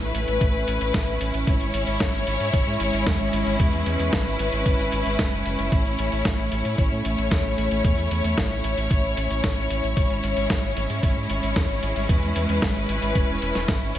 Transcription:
Already playing: A3 C#4 E4 B4
0.01 A1
0.14 A1, closed hi-hat
0.28 A1, closed hi-hat
0.41 A1, kick, closed hi-hat
0.54 A1
0.68 A1, closed hi-hat
0.81 A1, closed hi-hat
0.94 A1, kick, snare, closed hi-hat
1.07 A1
1.21 A1, closed hi-hat
1.34 A1, closed hi-hat
1.47 G#1 G#3 C#5, kick, closed hi-hat
1.61 G#1, closed hi-hat
1.74 G#1, closed hi-hat
1.87 G#1, closed hi-hat
2.00 G#1, kick, snare, closed hi-hat
2.14 G#1
2.27 G#1, closed hi-hat
2.40 G#2, closed hi-hat
2.53 G#1, kick, closed hi-hat
2.67 G#2
2.80 G#1, closed hi-hat
2.93 G#1, closed hi-hat
3.07 E2, kick, snare, closed hi-hat
3.20 G#1
3.33 G#1, closed hi-hat
3.46 G#1, closed hi-hat
3.60 E2 B4, kick, closed hi-hat
3.73 E2, closed hi-hat
3.86 E2, closed hi-hat
3.99 E2, closed hi-hat
4.13 G#1, kick, snare, closed hi-hat
4.26 G#1
4.39 G#1, closed hi-hat
4.53 G#1, closed hi-hat
4.66 G#1, kick, closed hi-hat
4.79 G#1, closed hi-hat
4.92 G#1, closed hi-hat
5.06 G#1, closed hi-hat
5.19 F#1, kick, snare, closed hi-hat
5.33 F#1
5.46 F#1, closed hi-hat
5.59 F#1, closed hi-hat
5.72 A1 A3 C#5, kick, closed hi-hat
5.85 A1, closed hi-hat
5.99 A1, closed hi-hat
6.12 A1, closed hi-hat
6.25 A1, kick, snare, closed hi-hat
6.39 A1
6.52 A1, closed hi-hat
6.65 A2, closed hi-hat
6.78 A1, kick, closed hi-hat
6.92 A2
7.05 A1, closed hi-hat
7.18 A1, closed hi-hat
7.31 E2, kick, snare, closed hi-hat
7.45 A1
7.58 A1, closed hi-hat
7.71 A1, closed hi-hat
7.84 E2, kick, closed hi-hat
7.98 E2, closed hi-hat
8.11 E2, closed hi-hat
8.24 E2, closed hi-hat
8.38 A1, kick, snare, closed hi-hat
8.51 A1
8.64 A1, closed hi-hat
8.77 A1, closed hi-hat
8.91 A1, kick, closed hi-hat
9.04 A1
9.17 A1, closed hi-hat
9.30 A1, closed hi-hat
9.44 A1, kick, snare, closed hi-hat
9.57 A1
9.70 A1, closed hi-hat
9.84 A1, closed hi-hat
9.97 G#1 G#3 C#4 E4, kick, closed hi-hat
10.10 G#1, closed hi-hat
10.23 G#1, closed hi-hat
10.37 G#1, closed hi-hat
10.50 G#1, kick, snare, closed hi-hat
10.63 G#1
10.77 G#1, closed hi-hat
10.90 G#2, closed hi-hat
11.03 G#1, kick, closed hi-hat
11.17 G#2
11.30 G#1, closed hi-hat
11.43 G#1, closed hi-hat
11.56 E2, kick, snare, closed hi-hat
11.70 G#1
11.83 G#1, closed hi-hat
11.96 G#1, closed hi-hat
12.09 E2 B4, kick, closed hi-hat
12.23 E2, closed hi-hat
12.36 E2, closed hi-hat
12.49 E2, closed hi-hat
12.62 G#1, kick, snare, closed hi-hat
12.76 G#1, closed hi-hat
12.89 G#1, closed hi-hat
13.02 G#1, closed hi-hat
13.15 E1, kick, closed hi-hat
13.29 E1
13.42 E1, closed hi-hat
13.55 E1, snare, closed hi-hat
13.68 G#1, kick, snare, closed hi-hat
13.82 G#1
13.95 G#1, closed hi-hat

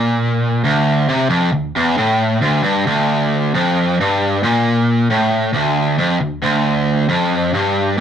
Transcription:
Already playing: A#2
0.65 D2
1.09 C3
1.30 F2
1.53 D2
1.76 E2
1.98 A2
2.42 D2
2.64 G2
2.87 D2
3.55 F2
4.00 G2
4.43 A#2
5.10 A2
5.54 D2
5.98 F2
6.20 D2
6.42 D2
7.09 F2
7.54 G2

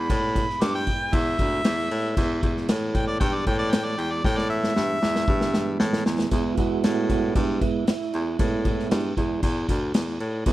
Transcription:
Already playing: G#3 B3 E4 B5
0.09 A2, kick, crash
0.35 kick, crash
0.50 snare
0.61 G2 D6, snare, crash
0.75 G5
0.87 kick, crash
1.13 E2 E5, kick, crash
1.39 D2, kick, crash
1.64 E2, snare, crash
1.79 snare
1.91 A2, crash
2.15 E2 E3 G#3 B3, kick, crash
2.43 E2, kick, crash
2.57 snare
2.69 A2, snare, crash
2.94 G5, kick, crash
3.08 D5
3.20 G2 G5, kick, crash
3.35 D5
3.46 A2 G5, kick, crash
3.59 D5
3.71 G5, snare, crash
3.85 D5, snare
3.98 E2 G5, crash
4.12 D5
4.24 A2 G5, kick, snare
4.38 D5, snare
4.50 E5
4.64 snare
4.76 G2, snare
5.02 E2, snare
5.16 snare
5.28 G2, kick
5.41 snare
5.54 snare
5.80 A2, snare
5.93 snare
6.05 E2, snare
6.19 snare
6.31 E2 G#3 B3 E4, kick, crash
6.54 E2 F4, kick, crash
6.59 F#4
6.84 A2, snare, crash
7.09 kick, crash
7.35 G2 E4, kick, crash
7.61 G#3 B3 E4, kick, crash
7.87 E4, snare, crash
8.01 snare
8.13 E2, crash
8.39 A2 G#3 B3 E4, kick, crash
8.65 kick, crash
8.79 snare
8.91 G2, snare, crash
9.17 E2 G#3 B3 E4, kick, crash
9.43 E2, kick, crash
9.69 D2, kick, crash
9.94 E2, snare, crash
10.08 snare
10.20 A2, crash
10.46 E2 G#3 B3 E4, kick, crash

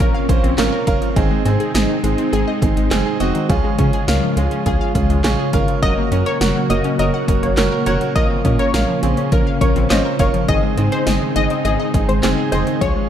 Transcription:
Already playing: A#3 C4 C#4
0.00 A#1 C#4 F4 A#4, kick, closed hi-hat
0.14 F5
0.29 A#1 C#4 F4 C5, kick, closed hi-hat
0.43 A#1 C4, closed hi-hat
0.58 G#1 C#4 F4 A#4 F5, snare, clap, closed hi-hat
0.72 A#4
0.87 F#1 C#4 F4 A#4 F5 A#5, kick, closed hi-hat
1.02 F3, closed hi-hat
1.16 G#1 D#3 G#3 C4 D#4 G#4, kick, closed hi-hat
1.31 G#3
1.45 G#2 C4 D#4 G#4, closed hi-hat
1.60 G#4, closed hi-hat
1.74 G#1 C4 D#4 G#4 D#5, snare, closed hi-hat
1.89 D#3
2.04 G#1 G#3 C4 D#4 G#4, closed hi-hat
2.18 C4, closed hi-hat
2.33 G#1 C4 D#4 G#4, closed hi-hat
2.47 D#5
2.62 G#1 C4 D#4 G#4, kick, closed hi-hat
2.76 G#1 G#3, closed hi-hat
2.91 F#1 C4 D#4 G#4, snare, clap, closed hi-hat
3.06 G#4
3.20 F1 C4 D#4 F#4 D#5, closed hi-hat
3.35 D#3, closed hi-hat
3.49 C#2 C#3 F3 C#4 F4 G#4, kick, closed hi-hat
3.64 G#3
3.78 C#3 C#4 F4 G#4, kick, closed hi-hat
3.93 G#4, closed hi-hat
4.08 C#2 C#4 F4 A#4 F5, snare, closed hi-hat
4.23 F3
4.37 C#2 G#3 C#4 F4 G#4, closed hi-hat
4.51 C#4, closed hi-hat
4.66 C#2 C#4 F4 G#4, kick, closed hi-hat
4.81 F5
4.95 C#2 C#4 F4 G#4, kick, closed hi-hat
5.09 C#2 G#3, closed hi-hat
5.24 A#1 C#4 F4 G#4, snare, clap, closed hi-hat
5.39 G#4
5.53 G#1 C#4 F4 A#4 F5, kick, closed hi-hat
5.68 F3, closed hi-hat
5.82 F#1 F#3 A#3 C#4 F#4 A#4 D#5, kick, closed hi-hat
5.97 A#3
6.12 F#2 C#4 F#4 A#4, closed hi-hat
6.26 A#4 C#5, closed hi-hat
6.41 F#1 C#4 F#4 A#4 F#5, snare, closed hi-hat
6.56 F#3
6.70 F#1 A#3 C#4 F#4 A#4 D#5, closed hi-hat
6.84 C#4, closed hi-hat
6.99 F#1 C#4 F#4 A#4 D#5, closed hi-hat
7.14 F#5
7.28 F#1 C#4 F#4 A#4, kick, closed hi-hat
7.43 F#1 A#3 C#5, closed hi-hat
7.57 F#1 C#4 F#4 A#4, snare, clap, closed hi-hat
7.72 A#4
7.86 F1 C#4 F#4 A#4 C#5 F#5, closed hi-hat
8.01 F#3, closed hi-hat
8.15 A#1 C#3 F3 C#4 F4 A#4 D#5, kick, closed hi-hat
8.30 C4
8.44 A#2 C#4 F4 A#4, kick, closed hi-hat
8.59 A#4 C#5, closed hi-hat
8.74 A#1 C#4 F4 A#4 F5, snare, closed hi-hat
8.88 F3
9.03 A#1 C4 C#4 F4 G#4, closed hi-hat
9.17 C#4, closed hi-hat
9.32 A#1 C#4 F4 A#4, kick, closed hi-hat
9.47 F5
9.61 A#1 C#4 F4 A#4 C#5, kick, closed hi-hat
9.76 A#1 C4, closed hi-hat
9.90 G#1 C#4 F4 C5 D#5, snare, clap, closed hi-hat
10.05 A#4
10.19 F#1 C#4 F4 A#4 C#5 F5, kick, closed hi-hat
10.34 F3, closed hi-hat
10.48 G#1 D#3 G#3 C4 D#4 G#4 D#5, kick, closed hi-hat
10.63 G#3
10.77 G#2 C4 D#4 G#4, closed hi-hat
10.92 G#4 C5, closed hi-hat
11.07 G#1 C4 D#4 G#4 D#5, snare, closed hi-hat
11.21 D#3
11.36 G#1 G#3 C4 D#4 G#4 D#5, closed hi-hat
11.50 C4, closed hi-hat
11.65 G#1 C4 D#4 G#4 D#5, closed hi-hat
11.80 D#5
11.94 G#1 C4 D#4 G#4, kick, closed hi-hat
12.09 G#1 G#3 C5, closed hi-hat
12.23 F#1 C4 D#4 G#4, snare, clap, closed hi-hat
12.38 G#4
12.52 F1 C4 D#4 G#4 C5 D#5, closed hi-hat
12.67 D#3, closed hi-hat
12.81 C#2 C#3 F3 C#4 F4 G#4 C#5, kick, closed hi-hat
12.96 G#3

